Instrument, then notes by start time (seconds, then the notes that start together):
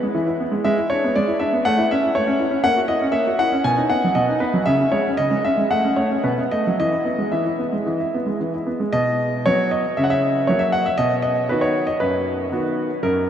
grand piano
Already playing: B4
0.03 G#3
0.15 E3
0.27 E4
0.40 B3
0.52 G#3
0.64 G#3 E5
0.77 E4
0.90 D4 C#5
1.04 B3
1.16 G#3 D5
1.28 E4
1.40 D4 E5
1.53 B3
1.65 A3 F#5
1.78 E4
1.91 C#4 E5
2.03 E4
2.15 A3 C#5
2.27 C#4
2.39 E4
2.51 C#4
2.64 A#3 F#5
2.76 F#4
2.88 E4 D#5
3.02 C#4
3.12 A#3 E5
3.27 F#4
3.39 E4 F#5
3.52 C#4
3.64 B2 G#5
3.78 D#4
3.90 B3 F#5
4.04 F#3
4.15 B2 D#5
4.29 D#4
4.40 B3 B4
4.54 F#3
4.66 C#3 E5
4.81 C#4
4.92 G#3 C#5
5.08 C#4
5.17 C#3 D#5
5.31 G#3
5.45 C#4 E5
5.58 G#3
5.71 A3 F#5
5.84 C#4
5.96 A3 C#5
6.12 C#4
6.24 B2 B4
6.38 B3
6.51 A3 D#5
6.67 F#3
6.80 E3 D#5
6.92 E4
7.05 B3
7.18 G#3
7.32 E3 E5
7.46 E4
7.59 B3
7.73 G#3
7.86 E3
8.00 E4
8.14 B3
8.26 G#3
8.41 E3
8.54 E4
8.67 B3
8.80 G#3
8.93 B2 D#5
9.46 F#3 B3 F#4 C#5
9.71 D#5
9.97 C#3 E5
10.04 F#5
10.10 E5
10.47 F#3 A#3 F#4 C#5
10.59 E5
10.72 F#5
10.86 E5
10.98 B2 D#5
11.22 D#5
11.49 D#3 B3 F#4 B4
11.61 C#5
11.87 D#5
12.00 F#2 B4
12.52 D#3 B3 F#4
13.03 F#2 A#4